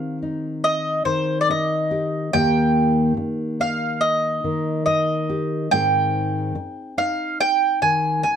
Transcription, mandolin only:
0.00 0.18 F5 medium
0.64 1.05 D#5 medium
1.05 1.40 C5 medium
1.41 1.48 D5 medium
1.51 2.36 D#5 medium
2.33 3.13 G5 medium
3.61 4.03 F5 medium
4.01 4.85 D#5 medium
4.86 5.73 D#5 medium
5.71 6.98 G5 medium
6.98 7.40 F5 medium
7.40 7.79 G5 medium
7.82 8.22 G#5 medium
8.23 8.36 G#5 medium

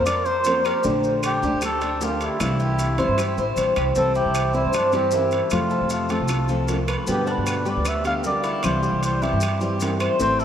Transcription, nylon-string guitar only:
0.07 muted nylon-string guitar stroke medium
0.45 0.83 F3 soft
0.45 0.84 A#3 soft
0.45 0.84 C4 soft
0.45 0.84 F4 medium
0.84 1.42 D3 medium
0.84 1.42 A3 medium
0.84 1.42 D4 medium
0.84 1.43 G4 medium
1.43 1.62 A3 medium
1.43 1.62 D4 medium
1.43 1.62 G4 medium
1.63 muted nylon-string guitar stroke medium
2.00 2.39 D3 soft
2.00 2.40 A3 soft
2.00 2.40 D4 soft
2.00 2.40 G4 medium
2.40 2.98 C3 medium
2.40 2.98 E3 medium
2.40 2.98 G3 medium
2.40 2.98 C4 medium
2.40 2.97 E4 medium
2.98 3.17 E3 medium
2.98 3.17 G3 medium
2.98 3.18 C4 medium
2.98 3.17 E4 medium
3.18 muted nylon-string guitar stroke medium
3.57 3.95 E3 soft
3.57 3.95 G3 soft
3.57 3.96 C4 medium
3.57 3.96 E4 medium
3.96 4.54 C3 medium
3.96 4.54 E3 medium
3.96 4.54 G3 medium
3.96 4.54 C4 medium
3.96 4.53 E4 medium
4.54 4.73 E3 soft
4.54 4.73 G3 medium
4.54 4.73 C4 medium
4.54 4.73 E4 medium
4.74 muted nylon-string guitar stroke medium
4.93 5.11 E3 medium
4.93 5.12 G3 medium
4.93 5.12 C4 medium
4.93 5.12 E4 medium
5.12 5.51 E3 soft
5.12 5.51 G3 soft
5.12 5.52 C4 soft
5.12 5.52 E4 soft
5.51 6.10 C3 medium
5.51 6.10 F3 medium
5.51 6.10 A3 medium
5.51 6.09 C4 medium
5.51 6.09 F4 medium
6.10 6.29 F3 soft
6.10 6.29 A3 medium
6.10 6.29 C4 medium
6.10 6.29 F4 medium
6.30 muted nylon-string guitar stroke medium
6.49 6.67 F3 medium
6.49 6.68 A3 medium
6.49 6.69 C4 medium
6.49 6.68 F4 medium
6.69 7.07 F3 soft
6.69 7.07 A3 medium
6.69 7.08 C4 soft
6.69 7.08 F4 soft
7.07 7.65 B2 medium
7.07 7.66 D3 medium
7.07 7.66 G3 medium
7.07 7.65 B3 medium
7.07 7.65 G4 medium
7.66 7.84 D3 medium
7.66 7.84 G3 medium
7.66 7.84 B3 medium
7.66 7.85 G4 medium
7.85 muted nylon-string guitar stroke medium
8.05 8.23 D3 medium
8.05 8.24 G3 medium
8.05 8.24 B3 medium
8.05 8.24 G4 medium
8.24 8.63 D3 soft
8.24 8.63 G3 soft
8.24 8.63 B3 soft
8.24 8.64 G4 soft
8.64 9.22 C3 medium
8.64 9.23 E3 medium
8.64 9.22 G3 medium
8.64 9.22 C4 medium
8.64 9.22 E4 medium
9.22 9.41 E3 medium
9.22 9.41 G3 medium
9.22 9.41 C4 medium
9.22 9.41 E4 medium
9.42 muted nylon-string guitar stroke medium
9.61 9.80 E3 medium
9.61 9.80 G3 medium
9.61 9.80 C4 medium
9.61 9.80 E4 medium
9.81 10.18 E3 soft
9.81 10.19 G3 soft
9.81 10.18 C4 soft
9.81 10.19 E4 medium
10.19 10.45 E3 medium
10.19 10.45 A3 medium
10.19 10.45 C4 medium
10.19 10.45 E4 medium

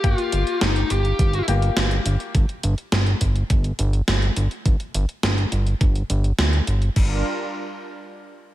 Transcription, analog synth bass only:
0.04 0.15 G1 loud
0.33 0.44 G1 loud
0.61 0.84 G1 medium
0.91 1.13 G1 medium
1.19 1.42 G1 medium
1.48 1.70 G1 loud
1.77 1.99 G1 loud
2.06 2.17 G1 medium
2.35 2.46 G1 loud
2.64 2.75 G1 medium
2.92 3.15 G1 medium
3.21 3.44 G1 medium
3.50 3.73 G1 medium
3.79 4.01 G1 loud
4.08 4.30 G1 loud
4.37 4.48 G1 medium
4.66 4.77 G1 loud
4.95 5.06 G1 loud
5.23 5.46 G1 medium
5.52 5.74 G1 medium
5.81 6.03 G1 medium
6.10 6.32 G1 loud
6.39 6.61 D2 loud
6.67 6.90 G1 medium
6.96 7.23 G1 medium

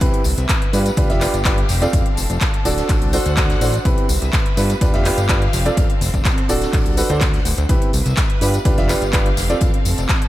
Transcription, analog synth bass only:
0.01 0.10 C2 medium
0.25 0.34 C2 medium
0.38 0.46 C2 loud
0.73 0.91 G2 medium
0.97 1.06 D2 medium
1.10 1.27 F1 medium
1.34 1.64 G1 loud
1.69 1.87 F1 medium
1.93 2.02 F1 medium
2.17 2.26 F1 medium
2.30 2.38 F1 medium
2.65 2.83 D1 medium
2.89 2.98 A1 medium
3.02 3.19 C2 medium
3.26 3.56 D2 loud
3.61 3.79 A1 medium
3.85 3.94 C2 medium
4.09 4.18 C2 medium
4.22 4.30 C2 loud
4.57 4.75 G2 medium
4.81 4.90 D2 medium
4.94 5.11 F1 medium
5.18 5.48 G1 medium
5.53 5.71 F1 medium
5.77 5.86 F1 medium
6.01 6.10 F1 medium
6.14 6.22 F1 loud
6.49 6.67 D1 medium
6.73 6.82 A1 medium
6.86 7.03 C2 medium
7.10 7.40 D2 loud
7.45 7.54 D1 medium
7.58 7.66 D2 loud
7.69 7.78 C2 loud
7.93 8.02 C2 medium
8.06 8.14 C2 medium
8.41 8.59 G2 medium
8.65 8.74 D2 medium
8.78 8.95 F1 medium
9.02 9.32 G1 loud
9.37 9.55 F1 medium
9.61 9.70 F1 medium
9.85 9.94 F1 medium
9.98 10.06 F1 loud

